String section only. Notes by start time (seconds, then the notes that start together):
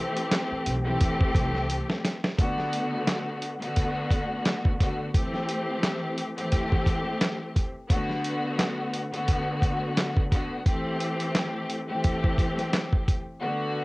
Already playing: E3 A3 C4 G4
0.85 E3 A3 C4 G4
2.38 D3 A3 B3 F#4
3.61 D3 A3 B3 F#4
4.80 D3 A3 B3 F#4
5.14 E3 A3 C4 G4
6.36 E3 A3 C4 G4
7.89 D3 A3 B3 F#4
9.12 D3 A3 B3 F#4
10.31 D3 A3 B3 F#4
10.66 E3 A3 C4 G4
11.88 E3 A3 C4 G4
13.41 D3 A3 B3 F#4